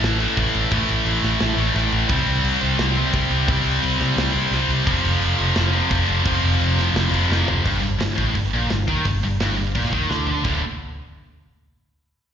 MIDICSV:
0, 0, Header, 1, 5, 480
1, 0, Start_track
1, 0, Key_signature, -1, "minor"
1, 0, Tempo, 345821
1, 991, Time_signature, 4, 2, 24, 8
1, 9637, Tempo, 350672
1, 17015, End_track
2, 0, Start_track
2, 0, Title_t, "Distorted electric guitar"
2, 0, Program_c, 0, 30
2, 0, Note_on_c, 0, 45, 76
2, 0, Note_on_c, 0, 52, 92
2, 0, Note_on_c, 0, 57, 88
2, 960, Note_off_c, 0, 45, 0
2, 972, Note_off_c, 0, 57, 0
2, 997, Note_off_c, 0, 52, 0
2, 1708, Note_on_c, 0, 57, 93
2, 1721, Note_on_c, 0, 52, 76
2, 1738, Note_on_c, 0, 45, 72
2, 2882, Note_off_c, 0, 45, 0
2, 2890, Note_off_c, 0, 57, 0
2, 2894, Note_off_c, 0, 52, 0
2, 3627, Note_on_c, 0, 60, 90
2, 3643, Note_on_c, 0, 55, 85
2, 3655, Note_on_c, 0, 48, 73
2, 4796, Note_off_c, 0, 48, 0
2, 4810, Note_off_c, 0, 55, 0
2, 4837, Note_off_c, 0, 60, 0
2, 5524, Note_on_c, 0, 60, 91
2, 5544, Note_on_c, 0, 55, 86
2, 5563, Note_on_c, 0, 48, 74
2, 6722, Note_off_c, 0, 48, 0
2, 6732, Note_off_c, 0, 55, 0
2, 6755, Note_off_c, 0, 60, 0
2, 7465, Note_on_c, 0, 53, 83
2, 7477, Note_on_c, 0, 48, 91
2, 7492, Note_on_c, 0, 41, 71
2, 8658, Note_off_c, 0, 53, 0
2, 8664, Note_off_c, 0, 48, 0
2, 8667, Note_off_c, 0, 41, 0
2, 9399, Note_on_c, 0, 53, 82
2, 9419, Note_on_c, 0, 48, 82
2, 9423, Note_on_c, 0, 41, 70
2, 10581, Note_off_c, 0, 53, 0
2, 10590, Note_off_c, 0, 48, 0
2, 10592, Note_off_c, 0, 41, 0
2, 17015, End_track
3, 0, Start_track
3, 0, Title_t, "Distorted electric guitar"
3, 0, Program_c, 1, 30
3, 0, Note_on_c, 1, 45, 98
3, 0, Note_on_c, 1, 52, 111
3, 0, Note_on_c, 1, 57, 98
3, 265, Note_off_c, 1, 45, 0
3, 268, Note_off_c, 1, 57, 0
3, 284, Note_on_c, 1, 57, 86
3, 291, Note_off_c, 1, 52, 0
3, 297, Note_on_c, 1, 52, 78
3, 323, Note_on_c, 1, 45, 78
3, 504, Note_off_c, 1, 45, 0
3, 504, Note_off_c, 1, 57, 0
3, 520, Note_on_c, 1, 45, 79
3, 531, Note_off_c, 1, 52, 0
3, 537, Note_on_c, 1, 52, 79
3, 556, Note_on_c, 1, 57, 90
3, 980, Note_off_c, 1, 45, 0
3, 998, Note_off_c, 1, 57, 0
3, 999, Note_on_c, 1, 45, 97
3, 1021, Note_off_c, 1, 52, 0
3, 1027, Note_on_c, 1, 52, 97
3, 1039, Note_on_c, 1, 57, 110
3, 2160, Note_off_c, 1, 57, 0
3, 2176, Note_off_c, 1, 45, 0
3, 2177, Note_on_c, 1, 57, 87
3, 2202, Note_off_c, 1, 52, 0
3, 2207, Note_on_c, 1, 52, 78
3, 2227, Note_on_c, 1, 45, 80
3, 2407, Note_off_c, 1, 57, 0
3, 2409, Note_off_c, 1, 45, 0
3, 2426, Note_on_c, 1, 45, 69
3, 2436, Note_off_c, 1, 52, 0
3, 2442, Note_on_c, 1, 52, 83
3, 2465, Note_on_c, 1, 57, 90
3, 2890, Note_off_c, 1, 45, 0
3, 2909, Note_off_c, 1, 57, 0
3, 2909, Note_on_c, 1, 48, 89
3, 2934, Note_off_c, 1, 52, 0
3, 2939, Note_on_c, 1, 55, 100
3, 2958, Note_on_c, 1, 60, 117
3, 4090, Note_off_c, 1, 48, 0
3, 4106, Note_off_c, 1, 55, 0
3, 4117, Note_off_c, 1, 60, 0
3, 4123, Note_on_c, 1, 60, 83
3, 4140, Note_on_c, 1, 55, 83
3, 4155, Note_on_c, 1, 48, 69
3, 4328, Note_off_c, 1, 48, 0
3, 4345, Note_on_c, 1, 48, 78
3, 4347, Note_off_c, 1, 55, 0
3, 4365, Note_on_c, 1, 55, 87
3, 4377, Note_off_c, 1, 60, 0
3, 4383, Note_on_c, 1, 60, 82
3, 4810, Note_off_c, 1, 48, 0
3, 4820, Note_off_c, 1, 55, 0
3, 4839, Note_on_c, 1, 48, 98
3, 4864, Note_on_c, 1, 55, 102
3, 4881, Note_off_c, 1, 60, 0
3, 4886, Note_on_c, 1, 60, 97
3, 5993, Note_off_c, 1, 60, 0
3, 5999, Note_on_c, 1, 60, 94
3, 6010, Note_off_c, 1, 55, 0
3, 6018, Note_off_c, 1, 48, 0
3, 6027, Note_on_c, 1, 55, 80
3, 6038, Note_on_c, 1, 48, 79
3, 6232, Note_off_c, 1, 48, 0
3, 6249, Note_on_c, 1, 48, 76
3, 6252, Note_off_c, 1, 55, 0
3, 6269, Note_on_c, 1, 55, 81
3, 6278, Note_off_c, 1, 60, 0
3, 6284, Note_on_c, 1, 60, 94
3, 6724, Note_off_c, 1, 48, 0
3, 6731, Note_on_c, 1, 41, 90
3, 6734, Note_off_c, 1, 55, 0
3, 6746, Note_on_c, 1, 48, 95
3, 6760, Note_off_c, 1, 60, 0
3, 6765, Note_on_c, 1, 53, 98
3, 7928, Note_off_c, 1, 41, 0
3, 7933, Note_off_c, 1, 53, 0
3, 7936, Note_off_c, 1, 48, 0
3, 7949, Note_on_c, 1, 53, 96
3, 7966, Note_on_c, 1, 48, 86
3, 7988, Note_on_c, 1, 41, 81
3, 8161, Note_off_c, 1, 41, 0
3, 8176, Note_off_c, 1, 53, 0
3, 8178, Note_on_c, 1, 41, 82
3, 8185, Note_off_c, 1, 48, 0
3, 8201, Note_on_c, 1, 48, 84
3, 8212, Note_on_c, 1, 53, 97
3, 8626, Note_off_c, 1, 41, 0
3, 8643, Note_on_c, 1, 41, 95
3, 8648, Note_off_c, 1, 48, 0
3, 8664, Note_on_c, 1, 48, 108
3, 8670, Note_off_c, 1, 53, 0
3, 8684, Note_on_c, 1, 53, 96
3, 9849, Note_off_c, 1, 41, 0
3, 9853, Note_off_c, 1, 53, 0
3, 9859, Note_off_c, 1, 48, 0
3, 9870, Note_on_c, 1, 53, 91
3, 9898, Note_on_c, 1, 48, 79
3, 9919, Note_on_c, 1, 41, 72
3, 10091, Note_off_c, 1, 41, 0
3, 10098, Note_off_c, 1, 53, 0
3, 10107, Note_on_c, 1, 41, 72
3, 10113, Note_off_c, 1, 48, 0
3, 10128, Note_on_c, 1, 48, 89
3, 10145, Note_on_c, 1, 53, 85
3, 10575, Note_off_c, 1, 41, 0
3, 10585, Note_off_c, 1, 48, 0
3, 10590, Note_on_c, 1, 43, 92
3, 10594, Note_off_c, 1, 53, 0
3, 10806, Note_off_c, 1, 43, 0
3, 10822, Note_on_c, 1, 43, 78
3, 11019, Note_off_c, 1, 43, 0
3, 11067, Note_on_c, 1, 43, 82
3, 11261, Note_off_c, 1, 43, 0
3, 11300, Note_on_c, 1, 45, 97
3, 11538, Note_off_c, 1, 45, 0
3, 11562, Note_on_c, 1, 43, 72
3, 11749, Note_off_c, 1, 43, 0
3, 11815, Note_on_c, 1, 46, 97
3, 12036, Note_off_c, 1, 46, 0
3, 12057, Note_on_c, 1, 43, 73
3, 12236, Note_off_c, 1, 43, 0
3, 12287, Note_on_c, 1, 51, 86
3, 12512, Note_off_c, 1, 51, 0
3, 12527, Note_on_c, 1, 43, 69
3, 12711, Note_off_c, 1, 43, 0
3, 12778, Note_on_c, 1, 43, 68
3, 12957, Note_off_c, 1, 43, 0
3, 13019, Note_on_c, 1, 43, 101
3, 13228, Note_off_c, 1, 43, 0
3, 13245, Note_on_c, 1, 43, 66
3, 13430, Note_off_c, 1, 43, 0
3, 13476, Note_on_c, 1, 46, 101
3, 13707, Note_off_c, 1, 46, 0
3, 13708, Note_on_c, 1, 51, 87
3, 13961, Note_off_c, 1, 51, 0
3, 13961, Note_on_c, 1, 50, 85
3, 14418, Note_off_c, 1, 50, 0
3, 14422, Note_on_c, 1, 38, 87
3, 14428, Note_on_c, 1, 45, 85
3, 14435, Note_on_c, 1, 50, 91
3, 14620, Note_off_c, 1, 38, 0
3, 14623, Note_off_c, 1, 45, 0
3, 14627, Note_off_c, 1, 50, 0
3, 17015, End_track
4, 0, Start_track
4, 0, Title_t, "Picked electric bass"
4, 0, Program_c, 2, 34
4, 27, Note_on_c, 2, 33, 91
4, 350, Note_off_c, 2, 33, 0
4, 515, Note_on_c, 2, 33, 89
4, 675, Note_off_c, 2, 33, 0
4, 770, Note_on_c, 2, 33, 96
4, 925, Note_off_c, 2, 33, 0
4, 998, Note_on_c, 2, 33, 104
4, 1156, Note_off_c, 2, 33, 0
4, 1236, Note_on_c, 2, 33, 85
4, 1394, Note_off_c, 2, 33, 0
4, 1462, Note_on_c, 2, 33, 93
4, 1625, Note_off_c, 2, 33, 0
4, 1707, Note_on_c, 2, 33, 102
4, 1867, Note_off_c, 2, 33, 0
4, 1953, Note_on_c, 2, 33, 94
4, 2111, Note_off_c, 2, 33, 0
4, 2178, Note_on_c, 2, 33, 87
4, 2341, Note_off_c, 2, 33, 0
4, 2423, Note_on_c, 2, 33, 86
4, 2585, Note_off_c, 2, 33, 0
4, 2678, Note_on_c, 2, 33, 94
4, 2834, Note_off_c, 2, 33, 0
4, 2904, Note_on_c, 2, 36, 103
4, 3065, Note_off_c, 2, 36, 0
4, 3139, Note_on_c, 2, 36, 90
4, 3302, Note_off_c, 2, 36, 0
4, 3388, Note_on_c, 2, 36, 94
4, 3547, Note_off_c, 2, 36, 0
4, 3646, Note_on_c, 2, 36, 96
4, 3799, Note_off_c, 2, 36, 0
4, 3879, Note_on_c, 2, 36, 93
4, 4195, Note_off_c, 2, 36, 0
4, 4352, Note_on_c, 2, 36, 86
4, 4510, Note_off_c, 2, 36, 0
4, 4586, Note_on_c, 2, 36, 98
4, 4746, Note_off_c, 2, 36, 0
4, 4831, Note_on_c, 2, 36, 114
4, 4989, Note_off_c, 2, 36, 0
4, 5063, Note_on_c, 2, 36, 94
4, 5224, Note_off_c, 2, 36, 0
4, 5321, Note_on_c, 2, 36, 84
4, 5476, Note_off_c, 2, 36, 0
4, 5545, Note_on_c, 2, 36, 97
4, 5706, Note_off_c, 2, 36, 0
4, 5783, Note_on_c, 2, 36, 103
4, 5945, Note_off_c, 2, 36, 0
4, 6031, Note_on_c, 2, 36, 87
4, 6190, Note_off_c, 2, 36, 0
4, 6263, Note_on_c, 2, 36, 85
4, 6425, Note_off_c, 2, 36, 0
4, 6509, Note_on_c, 2, 36, 100
4, 6670, Note_off_c, 2, 36, 0
4, 6760, Note_on_c, 2, 29, 101
4, 6917, Note_off_c, 2, 29, 0
4, 6995, Note_on_c, 2, 29, 87
4, 7154, Note_off_c, 2, 29, 0
4, 7228, Note_on_c, 2, 29, 101
4, 7390, Note_off_c, 2, 29, 0
4, 7475, Note_on_c, 2, 29, 107
4, 7635, Note_off_c, 2, 29, 0
4, 7728, Note_on_c, 2, 29, 98
4, 8045, Note_off_c, 2, 29, 0
4, 8193, Note_on_c, 2, 29, 88
4, 8355, Note_off_c, 2, 29, 0
4, 8440, Note_on_c, 2, 29, 92
4, 8600, Note_off_c, 2, 29, 0
4, 8683, Note_on_c, 2, 29, 107
4, 8842, Note_off_c, 2, 29, 0
4, 8937, Note_on_c, 2, 29, 86
4, 9092, Note_off_c, 2, 29, 0
4, 9161, Note_on_c, 2, 29, 89
4, 9321, Note_off_c, 2, 29, 0
4, 9381, Note_on_c, 2, 29, 92
4, 9549, Note_off_c, 2, 29, 0
4, 9635, Note_on_c, 2, 29, 106
4, 9796, Note_off_c, 2, 29, 0
4, 9872, Note_on_c, 2, 29, 101
4, 10034, Note_off_c, 2, 29, 0
4, 10136, Note_on_c, 2, 29, 82
4, 10290, Note_off_c, 2, 29, 0
4, 10380, Note_on_c, 2, 29, 103
4, 10532, Note_off_c, 2, 29, 0
4, 10612, Note_on_c, 2, 31, 89
4, 10826, Note_off_c, 2, 31, 0
4, 10856, Note_on_c, 2, 31, 74
4, 11068, Note_off_c, 2, 31, 0
4, 11092, Note_on_c, 2, 31, 67
4, 11306, Note_off_c, 2, 31, 0
4, 11322, Note_on_c, 2, 33, 96
4, 11540, Note_off_c, 2, 33, 0
4, 11566, Note_on_c, 2, 31, 86
4, 11782, Note_off_c, 2, 31, 0
4, 11816, Note_on_c, 2, 34, 87
4, 12027, Note_off_c, 2, 34, 0
4, 12042, Note_on_c, 2, 31, 68
4, 12260, Note_off_c, 2, 31, 0
4, 12287, Note_on_c, 2, 39, 101
4, 12502, Note_off_c, 2, 39, 0
4, 12526, Note_on_c, 2, 31, 80
4, 12742, Note_off_c, 2, 31, 0
4, 12784, Note_on_c, 2, 31, 74
4, 12992, Note_off_c, 2, 31, 0
4, 13009, Note_on_c, 2, 31, 87
4, 13224, Note_off_c, 2, 31, 0
4, 13261, Note_on_c, 2, 31, 72
4, 13468, Note_off_c, 2, 31, 0
4, 13476, Note_on_c, 2, 34, 92
4, 13697, Note_off_c, 2, 34, 0
4, 13730, Note_on_c, 2, 39, 85
4, 13945, Note_off_c, 2, 39, 0
4, 13954, Note_on_c, 2, 38, 79
4, 14400, Note_off_c, 2, 38, 0
4, 14434, Note_on_c, 2, 26, 95
4, 14658, Note_off_c, 2, 26, 0
4, 17015, End_track
5, 0, Start_track
5, 0, Title_t, "Drums"
5, 51, Note_on_c, 9, 49, 88
5, 57, Note_on_c, 9, 38, 108
5, 190, Note_off_c, 9, 49, 0
5, 195, Note_off_c, 9, 38, 0
5, 279, Note_on_c, 9, 49, 70
5, 417, Note_off_c, 9, 49, 0
5, 512, Note_on_c, 9, 49, 83
5, 518, Note_on_c, 9, 36, 86
5, 651, Note_off_c, 9, 49, 0
5, 657, Note_off_c, 9, 36, 0
5, 758, Note_on_c, 9, 49, 64
5, 897, Note_off_c, 9, 49, 0
5, 983, Note_on_c, 9, 49, 104
5, 995, Note_on_c, 9, 36, 127
5, 1121, Note_off_c, 9, 49, 0
5, 1134, Note_off_c, 9, 36, 0
5, 1233, Note_on_c, 9, 49, 71
5, 1372, Note_off_c, 9, 49, 0
5, 1474, Note_on_c, 9, 49, 93
5, 1613, Note_off_c, 9, 49, 0
5, 1723, Note_on_c, 9, 49, 71
5, 1729, Note_on_c, 9, 38, 36
5, 1862, Note_off_c, 9, 49, 0
5, 1868, Note_off_c, 9, 38, 0
5, 1945, Note_on_c, 9, 49, 74
5, 1951, Note_on_c, 9, 38, 92
5, 2084, Note_off_c, 9, 49, 0
5, 2089, Note_off_c, 9, 38, 0
5, 2196, Note_on_c, 9, 49, 69
5, 2335, Note_off_c, 9, 49, 0
5, 2437, Note_on_c, 9, 49, 76
5, 2443, Note_on_c, 9, 38, 33
5, 2576, Note_off_c, 9, 49, 0
5, 2582, Note_off_c, 9, 38, 0
5, 2668, Note_on_c, 9, 49, 62
5, 2807, Note_off_c, 9, 49, 0
5, 2899, Note_on_c, 9, 49, 92
5, 2909, Note_on_c, 9, 36, 127
5, 3037, Note_off_c, 9, 49, 0
5, 3048, Note_off_c, 9, 36, 0
5, 3144, Note_on_c, 9, 49, 71
5, 3283, Note_off_c, 9, 49, 0
5, 3394, Note_on_c, 9, 49, 88
5, 3532, Note_off_c, 9, 49, 0
5, 3622, Note_on_c, 9, 49, 62
5, 3761, Note_off_c, 9, 49, 0
5, 3870, Note_on_c, 9, 49, 74
5, 3875, Note_on_c, 9, 38, 98
5, 4008, Note_off_c, 9, 49, 0
5, 4014, Note_off_c, 9, 38, 0
5, 4096, Note_on_c, 9, 49, 66
5, 4235, Note_off_c, 9, 49, 0
5, 4349, Note_on_c, 9, 49, 84
5, 4352, Note_on_c, 9, 36, 93
5, 4487, Note_off_c, 9, 49, 0
5, 4491, Note_off_c, 9, 36, 0
5, 4591, Note_on_c, 9, 49, 61
5, 4730, Note_off_c, 9, 49, 0
5, 4836, Note_on_c, 9, 36, 127
5, 4839, Note_on_c, 9, 49, 91
5, 4975, Note_off_c, 9, 36, 0
5, 4978, Note_off_c, 9, 49, 0
5, 5080, Note_on_c, 9, 49, 76
5, 5219, Note_off_c, 9, 49, 0
5, 5324, Note_on_c, 9, 49, 91
5, 5463, Note_off_c, 9, 49, 0
5, 5560, Note_on_c, 9, 49, 74
5, 5565, Note_on_c, 9, 38, 33
5, 5699, Note_off_c, 9, 49, 0
5, 5704, Note_off_c, 9, 38, 0
5, 5802, Note_on_c, 9, 49, 84
5, 5807, Note_on_c, 9, 38, 99
5, 5941, Note_off_c, 9, 49, 0
5, 5946, Note_off_c, 9, 38, 0
5, 6040, Note_on_c, 9, 49, 73
5, 6179, Note_off_c, 9, 49, 0
5, 6293, Note_on_c, 9, 49, 88
5, 6299, Note_on_c, 9, 38, 30
5, 6432, Note_off_c, 9, 49, 0
5, 6438, Note_off_c, 9, 38, 0
5, 6528, Note_on_c, 9, 49, 68
5, 6666, Note_off_c, 9, 49, 0
5, 6759, Note_on_c, 9, 36, 127
5, 6760, Note_on_c, 9, 49, 95
5, 6898, Note_off_c, 9, 36, 0
5, 6898, Note_off_c, 9, 49, 0
5, 7006, Note_on_c, 9, 49, 75
5, 7145, Note_off_c, 9, 49, 0
5, 7243, Note_on_c, 9, 49, 90
5, 7382, Note_off_c, 9, 49, 0
5, 7469, Note_on_c, 9, 49, 70
5, 7608, Note_off_c, 9, 49, 0
5, 7712, Note_on_c, 9, 49, 81
5, 7717, Note_on_c, 9, 38, 108
5, 7851, Note_off_c, 9, 49, 0
5, 7856, Note_off_c, 9, 38, 0
5, 7953, Note_on_c, 9, 49, 65
5, 8091, Note_off_c, 9, 49, 0
5, 8200, Note_on_c, 9, 49, 83
5, 8202, Note_on_c, 9, 36, 96
5, 8339, Note_off_c, 9, 49, 0
5, 8341, Note_off_c, 9, 36, 0
5, 8448, Note_on_c, 9, 49, 67
5, 8586, Note_off_c, 9, 49, 0
5, 8680, Note_on_c, 9, 49, 94
5, 8683, Note_on_c, 9, 36, 127
5, 8819, Note_off_c, 9, 49, 0
5, 8822, Note_off_c, 9, 36, 0
5, 8924, Note_on_c, 9, 49, 68
5, 9062, Note_off_c, 9, 49, 0
5, 9173, Note_on_c, 9, 49, 86
5, 9312, Note_off_c, 9, 49, 0
5, 9420, Note_on_c, 9, 49, 64
5, 9425, Note_on_c, 9, 38, 32
5, 9558, Note_off_c, 9, 49, 0
5, 9564, Note_off_c, 9, 38, 0
5, 9657, Note_on_c, 9, 49, 84
5, 9662, Note_on_c, 9, 38, 96
5, 9794, Note_off_c, 9, 49, 0
5, 9799, Note_off_c, 9, 38, 0
5, 9902, Note_on_c, 9, 49, 75
5, 10039, Note_off_c, 9, 49, 0
5, 10150, Note_on_c, 9, 38, 66
5, 10287, Note_off_c, 9, 38, 0
5, 10373, Note_on_c, 9, 43, 97
5, 10510, Note_off_c, 9, 43, 0
5, 10612, Note_on_c, 9, 57, 104
5, 10613, Note_on_c, 9, 36, 113
5, 10749, Note_off_c, 9, 36, 0
5, 10749, Note_off_c, 9, 57, 0
5, 11089, Note_on_c, 9, 46, 55
5, 11094, Note_on_c, 9, 38, 105
5, 11226, Note_off_c, 9, 46, 0
5, 11231, Note_off_c, 9, 38, 0
5, 11329, Note_on_c, 9, 36, 96
5, 11466, Note_off_c, 9, 36, 0
5, 11564, Note_on_c, 9, 46, 45
5, 11566, Note_on_c, 9, 36, 71
5, 11701, Note_off_c, 9, 46, 0
5, 11703, Note_off_c, 9, 36, 0
5, 12043, Note_on_c, 9, 46, 46
5, 12048, Note_on_c, 9, 38, 92
5, 12179, Note_off_c, 9, 46, 0
5, 12185, Note_off_c, 9, 38, 0
5, 12287, Note_on_c, 9, 36, 92
5, 12424, Note_off_c, 9, 36, 0
5, 12520, Note_on_c, 9, 46, 58
5, 12527, Note_on_c, 9, 36, 98
5, 12657, Note_off_c, 9, 46, 0
5, 12664, Note_off_c, 9, 36, 0
5, 13002, Note_on_c, 9, 46, 51
5, 13008, Note_on_c, 9, 38, 106
5, 13139, Note_off_c, 9, 46, 0
5, 13145, Note_off_c, 9, 38, 0
5, 13483, Note_on_c, 9, 36, 75
5, 13485, Note_on_c, 9, 46, 48
5, 13615, Note_on_c, 9, 38, 27
5, 13620, Note_off_c, 9, 36, 0
5, 13622, Note_off_c, 9, 46, 0
5, 13722, Note_on_c, 9, 36, 105
5, 13752, Note_off_c, 9, 38, 0
5, 13859, Note_off_c, 9, 36, 0
5, 13967, Note_on_c, 9, 38, 56
5, 14104, Note_off_c, 9, 38, 0
5, 14189, Note_on_c, 9, 43, 70
5, 14326, Note_off_c, 9, 43, 0
5, 14427, Note_on_c, 9, 57, 81
5, 14435, Note_on_c, 9, 36, 103
5, 14564, Note_off_c, 9, 57, 0
5, 14572, Note_off_c, 9, 36, 0
5, 17015, End_track
0, 0, End_of_file